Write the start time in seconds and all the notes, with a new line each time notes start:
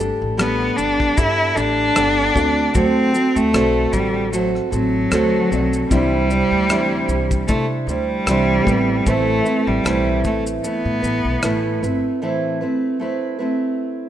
Already playing: G1 A3 G4 B4
0.00 D4 G4 A4, shaker
0.22 A1
0.37 G3 B3 D4 G4 A4, cross-stick, shaker
0.77 G1 D4, shaker
1.00 kick
1.16 G2 B3 D4 E4 G4 A4, kick, shaker
1.55 A1 D4 G4 A4, shaker
1.95 G1 G3 B3 D4 G4 A4, cross-stick, shaker
2.35 D2 A3 C4 F#4 A4 D5, kick, shaker
2.73 D2 D3 F#3 A3 C4 F#4 A4, kick, shaker
3.13 A3 C4 F#4 A4, shaker
3.35 D2 A3, shaker
3.53 B1 D3 A3 C4 F#4 A4, cross-stick, shaker
3.93 A1 G3, kick, shaker
4.32 F#3 A3 C4 F#4 A4, shaker
4.55 cross-stick
4.71 A1 F#3 A3 C4 F#4 A4, shaker
5.11 D2 D3 F#3 A3 C4 F#4 A4, cross-stick, shaker
5.51 B1 A3 C4 F#4 A4 D5, shaker
5.73 shaker
5.89 C2 C3 E3 G3 C4 D4 E4 C5, kick, shaker
5.93 D5
5.98 E4
6.30 G3 D4 E4 C5, shaker
6.51 D2
6.70 C3 E3 G3 D4 E4 C5, cross-stick, shaker
7.08 C2, shaker
7.31 kick, shaker
7.47 C3 G3 A3 D4 E4 C5, kick, shaker
7.87 D2 G3 D4 E4 C5, shaker
7.91 G3
8.26 C2 C3 E3 G3 D4 E4 C5, cross-stick, shaker
8.64 A1 A3 B3 E4 B4, kick, shaker
8.69 A3 C4
9.06 A1 A2 E3 A3 C4 E4 B4, kick, shaker
9.44 A3 C4 E4 B4, shaker
9.67 A1 G3
9.84 B1 A2 E3 A3 C4 E4 B4, cross-stick, shaker
10.24 A1 A3, kick, shaker
10.47 shaker
10.64 A3 B3 E4 B4, shaker
10.85 A2
11.02 A1 A3 E4 B4, shaker
11.24 B1
11.42 A1 A2 E3 A3 E4 B4, cross-stick, shaker
11.82 G1 A3 C4 E4 B4, shaker
12.22 A2 E3 A3 C4 E4 B4
12.61 A3 C4 E4 B4
12.99 A3 C4 E4 B4
13.39 A3 C4 E4 B4